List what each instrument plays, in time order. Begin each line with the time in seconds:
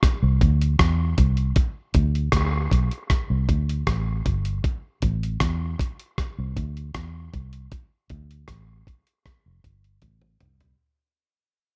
0.03 kick, cross-stick, closed hi-hat
0.23 fingered electric bass C2
0.41 fingered electric bass D2, kick, closed hi-hat
0.62 closed hi-hat
0.79 fingered electric bass E2, kick, cross-stick, closed hi-hat
1.18 fingered electric bass C2, kick, closed hi-hat
1.37 closed hi-hat
1.56 kick, closed hi-hat
1.94 fingered electric bass D2, kick, closed hi-hat
2.15 closed hi-hat
2.32 fingered electric bass D2, kick, cross-stick, closed hi-hat
2.71 fingered electric bass B1, kick, closed hi-hat
2.91 closed hi-hat
3.10 kick, cross-stick, closed hi-hat
3.30 fingered electric bass C2
3.49 fingered electric bass D2, kick, closed hi-hat
3.69 closed hi-hat
3.87 fingered electric bass A1, kick, cross-stick, closed hi-hat
4.26 fingered electric bass G1, kick, closed hi-hat
4.45 closed hi-hat
4.64 kick, closed hi-hat
5.02 fingered electric bass A1, kick, closed hi-hat
5.23 closed hi-hat
5.40 fingered electric bass E2, kick, cross-stick, closed hi-hat
5.79 kick, closed hi-hat
6.00 closed hi-hat
6.18 kick, cross-stick, closed hi-hat
6.39 fingered electric bass C2
6.57 fingered electric bass D2, kick, closed hi-hat
6.77 closed hi-hat
6.94 fingered electric bass E2, kick, cross-stick, closed hi-hat
7.34 fingered electric bass C2, kick, closed hi-hat
7.53 closed hi-hat
7.72 kick, closed hi-hat
8.10 fingered electric bass D2, kick, closed hi-hat
8.31 closed hi-hat
8.48 fingered electric bass A1, kick, cross-stick, closed hi-hat
8.87 kick, closed hi-hat
9.07 closed hi-hat
9.26 kick, cross-stick, closed hi-hat
9.46 fingered electric bass F1
9.64 fingered electric bass G1, kick, closed hi-hat
9.84 closed hi-hat
10.02 fingered electric bass A1, kick, closed hi-hat, high tom
10.22 mid tom
10.40 fingered electric bass C2, closed hi-hat, mid tom
10.60 closed hi-hat, floor tom